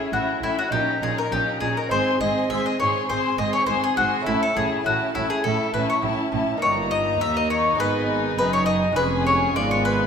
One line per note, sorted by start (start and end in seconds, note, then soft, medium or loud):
0.00 0.11 A2 soft
0.00 0.13 C#4 soft
0.00 0.67 C#4 soft
0.00 0.13 E4 soft
0.00 0.67 E4 soft
0.00 0.11 G#4 medium
0.00 0.12 E5 soft
0.12 0.21 A1 soft
0.12 0.20 A2 soft
0.12 0.40 A2 soft
0.12 0.42 C#4 soft
0.12 0.42 E4 soft
0.12 0.41 F#4 medium
0.12 0.42 E5 soft
0.42 0.51 A1 soft
0.42 0.50 A2 soft
0.42 0.70 A2 soft
0.42 0.71 C#4 soft
0.42 0.72 E4 soft
0.42 0.57 E4 medium
0.42 0.72 E5 soft
0.59 0.72 F#4 medium
0.68 0.80 A#2 soft
0.68 1.86 C#4 soft
0.68 1.86 D#4 soft
0.68 1.00 G4 medium
0.68 1.01 A#5 soft
0.72 0.80 A#1 soft
0.72 0.99 A#2 soft
0.72 1.02 C#4 soft
0.72 1.00 D#4 soft
1.01 1.10 A#1 soft
1.01 1.09 A#2 soft
1.01 1.29 A#2 soft
1.01 1.31 C#4 soft
1.01 1.31 D#4 soft
1.01 1.17 G#4 medium
1.01 1.30 A#5 soft
1.18 1.32 A#4 medium
1.31 1.39 A#1 soft
1.31 1.59 A#2 soft
1.31 1.40 A#2 soft
1.31 1.61 C#4 soft
1.31 1.61 D#4 soft
1.31 1.60 G4 medium
1.31 1.61 A#5 soft
1.61 1.69 A#1 soft
1.61 1.69 A#2 soft
1.61 1.89 A#2 soft
1.61 1.91 C#4 soft
1.61 1.91 D#4 soft
1.61 1.75 G#4 medium
1.61 1.91 A#5 soft
1.77 1.91 A#4 medium
1.87 4.21 C4 soft
1.87 4.21 D#4 soft
1.87 4.22 G#4 soft
1.87 2.19 G#4 soft
1.91 1.99 G#1 soft
1.91 1.99 G#2 medium
1.91 2.18 G#2 soft
1.91 2.20 C4 soft
1.91 2.19 C5 medium
1.91 2.19 C6 soft
2.20 2.28 G#1 soft
2.20 2.47 G#2 soft
2.20 2.29 G#2 soft
2.20 2.50 C4 soft
2.20 2.50 G#4 soft
2.20 2.48 D#5 medium
2.20 2.50 C6 soft
2.50 2.58 G#1 soft
2.50 2.77 G#2 soft
2.50 2.59 G#2 medium
2.50 2.79 C4 soft
2.50 2.79 G#4 soft
2.50 2.64 E5 medium
2.50 2.79 C6 soft
2.66 2.79 D#5 medium
2.80 2.88 G#1 soft
2.80 2.88 G#2 soft
2.80 3.07 G#2 soft
2.80 3.09 C4 soft
2.80 3.08 G#4 soft
2.80 3.07 C#5 medium
2.80 3.08 C6 soft
3.09 3.17 G#1 medium
3.09 3.17 G#2 soft
3.09 3.36 G#2 soft
3.09 3.38 C4 soft
3.09 3.37 G#4 soft
3.09 3.37 C5 medium
3.09 3.38 C6 soft
3.38 3.46 G#1 soft
3.38 3.65 G#2 soft
3.38 3.47 G#2 soft
3.38 3.68 C4 soft
3.38 3.67 G#4 soft
3.38 3.52 D#5 medium
3.38 3.67 C6 soft
3.53 3.66 C#5 medium
3.66 3.76 G#1 soft
3.66 3.94 G#2 soft
3.66 3.77 G#2 medium
3.66 3.97 C4 soft
3.66 3.97 G#4 soft
3.66 3.81 C5 medium
3.66 3.96 C6 soft
3.84 3.97 G#4 medium
3.96 4.06 G#1 soft
3.96 4.23 G#2 soft
3.96 4.06 G#2 medium
3.96 4.27 C4 soft
3.96 4.25 F#4 medium
3.96 4.26 G#4 soft
3.96 4.26 C6 soft
4.21 6.56 A3 soft
4.21 6.56 C#4 soft
4.21 6.57 E4 soft
4.26 4.35 A1 medium
4.26 4.53 A2 soft
4.26 4.36 A2 medium
4.26 4.56 C#4 soft
4.26 4.40 E4 medium
4.26 4.55 E4 soft
4.26 4.55 A5 soft
4.43 4.56 A4 medium
4.55 4.64 A1 soft
4.55 4.82 A2 soft
4.55 4.65 A2 soft
4.55 4.84 C#4 soft
4.55 4.84 E4 soft
4.55 4.84 G#4 medium
4.55 4.84 A5 soft
4.84 4.94 A1 medium
4.84 5.11 A2 soft
4.84 4.95 A2 medium
4.84 5.14 C#4 soft
4.84 5.14 E4 soft
4.84 5.13 F#4 medium
4.84 5.14 A5 soft
5.14 5.24 A1 medium
5.14 5.41 A2 soft
5.14 5.24 A2 medium
5.14 5.44 C#4 soft
5.14 5.29 E4 medium
5.14 5.44 E4 soft
5.14 5.43 A5 soft
5.30 5.44 G#4 medium
5.44 5.53 A1 soft
5.44 5.71 A2 soft
5.44 5.53 A2 medium
5.44 5.73 C#4 soft
5.44 5.72 E4 soft
5.44 5.72 A4 medium
5.44 5.73 A5 soft
5.73 5.82 A1 medium
5.73 6.00 A2 soft
5.73 5.82 A2 soft
5.73 6.02 C#4 soft
5.73 6.01 E4 soft
5.73 5.88 B4 medium
5.73 6.03 A5 soft
5.90 6.03 C#5 medium
6.02 6.12 A1 medium
6.02 6.29 A2 soft
6.02 6.11 A2 medium
6.02 6.31 C#4 soft
6.02 6.31 E4 soft
6.02 6.31 A5 medium
6.32 6.41 A1 medium
6.32 6.59 A2 soft
6.32 6.41 A2 medium
6.32 6.62 C#4 soft
6.32 6.62 E4 soft
6.32 6.62 A5 soft
6.58 7.74 A#3 soft
6.58 7.74 D#4 soft
6.58 8.92 D#4 medium
6.62 7.17 G1 medium
6.62 7.17 G2 medium
6.62 7.17 G2 soft
6.62 7.75 A#3 medium
6.62 6.89 C#5 medium
6.62 7.76 A#5 medium
6.91 7.18 D#5 medium
7.20 7.75 D#2 soft
7.20 7.78 D#2 medium
7.20 7.35 E5 medium
7.37 7.50 D#5 medium
7.50 7.77 C#5 medium
7.75 8.91 G#3 soft
7.75 8.92 D#4 soft
7.75 8.92 G#4 soft
7.79 8.37 G#1 medium
7.79 8.34 G#2 soft
7.79 8.37 G#2 medium
7.79 8.38 B3 medium
7.79 8.34 B4 medium
7.79 8.38 G#5 medium
8.38 8.95 F#1 medium
8.38 8.95 F#2 medium
8.38 8.93 F#2 soft
8.38 8.97 D#4 medium
8.38 8.52 B4 medium
8.38 8.96 G#5 medium
8.53 8.65 C#5 medium
8.66 8.94 D#5 medium
8.92 9.54 F2 medium
8.92 10.07 G#3 soft
8.92 10.07 C#4 soft
8.92 10.07 G#4 soft
8.92 9.24 B4 medium
8.97 9.54 F1 medium
8.97 9.52 F2 soft
8.97 9.54 C#4 medium
8.97 9.55 G#4 medium
8.97 10.07 G#5 medium
9.27 9.54 C#5 medium
9.55 10.07 G#1 medium
9.55 10.07 G#2 medium
9.55 10.07 G#2 soft
9.55 10.07 B3 medium
9.55 10.07 F4 soft
9.55 9.69 D5 medium
9.71 9.84 C#5 medium
9.85 10.07 B4 medium